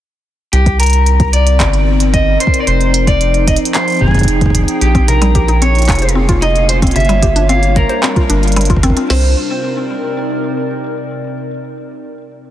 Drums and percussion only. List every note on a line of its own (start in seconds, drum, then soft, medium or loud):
0.53 closed hi-hat medium
0.66 kick loud
0.66 closed hi-hat soft
0.80 closed hi-hat medium
0.83 closed hi-hat medium
0.86 closed hi-hat medium
0.90 closed hi-hat soft
0.93 closed hi-hat medium
1.06 closed hi-hat medium
1.20 kick loud
1.20 closed hi-hat soft
1.33 closed hi-hat medium
1.47 closed hi-hat medium
1.60 kick loud
1.60 clap loud
1.60 closed hi-hat medium
1.73 closed hi-hat soft
2.00 closed hi-hat medium
2.14 kick loud
2.14 closed hi-hat medium
2.40 closed hi-hat medium
2.47 kick loud
2.54 closed hi-hat medium
2.67 closed hi-hat medium
2.81 closed hi-hat soft
2.94 closed hi-hat medium
3.07 kick loud
3.07 closed hi-hat medium
3.21 closed hi-hat medium
3.34 closed hi-hat soft
3.48 kick loud
3.48 closed hi-hat medium
3.56 closed hi-hat medium
3.65 closed hi-hat medium
3.74 clap loud
3.74 closed hi-hat medium
3.88 closed hi-hat soft
3.90 closed hi-hat soft
3.92 closed hi-hat soft
3.94 closed hi-hat soft
3.97 closed hi-hat soft
3.99 kick medium
3.99 closed hi-hat soft
4.04 kick medium
4.08 kick medium
4.11 kick medium
4.15 kick medium
4.15 closed hi-hat soft
4.18 kick medium
4.18 closed hi-hat soft
4.21 kick loud
4.21 closed hi-hat soft
4.25 kick loud
4.25 closed hi-hat medium
4.41 kick loud
4.41 closed hi-hat soft
4.46 kick medium
4.50 kick medium
4.55 kick medium
4.55 closed hi-hat medium
4.59 kick soft
4.64 kick soft
4.68 closed hi-hat medium
4.81 closed hi-hat medium
4.95 kick loud
4.95 closed hi-hat soft
5.08 closed hi-hat medium
5.22 closed hi-hat medium
5.35 kick loud
5.35 closed hi-hat medium
5.48 closed hi-hat soft
5.62 closed hi-hat medium
5.75 closed hi-hat soft
5.79 closed hi-hat soft
5.82 closed hi-hat soft
5.85 clap loud
5.85 closed hi-hat soft
5.89 kick loud
5.89 closed hi-hat medium
5.92 closed hi-hat soft
5.95 closed hi-hat soft
5.99 closed hi-hat soft
6.02 closed hi-hat soft
6.09 closed hi-hat medium
6.29 kick loud
6.29 closed hi-hat medium
6.42 closed hi-hat medium
6.56 closed hi-hat soft
6.69 closed hi-hat medium
6.82 kick loud
6.82 closed hi-hat soft
6.87 closed hi-hat soft
6.91 closed hi-hat soft
6.96 closed hi-hat soft
7.00 closed hi-hat soft
7.05 closed hi-hat soft
7.09 closed hi-hat soft
7.23 kick loud
7.23 closed hi-hat medium
7.36 closed hi-hat medium
7.49 closed hi-hat soft
7.63 closed hi-hat soft
7.76 kick loud
7.76 closed hi-hat medium
7.89 closed hi-hat medium
8.03 clap loud
8.16 kick loud
8.16 closed hi-hat soft
8.30 closed hi-hat medium
8.43 closed hi-hat soft
8.48 closed hi-hat soft
8.52 closed hi-hat soft
8.56 closed hi-hat medium
8.61 closed hi-hat soft
8.65 closed hi-hat soft
8.70 kick loud
8.70 closed hi-hat soft
8.77 kick medium
8.83 kick medium
8.83 closed hi-hat medium
8.90 kick medium
8.97 closed hi-hat medium
9.10 snare loud
9.10 crash medium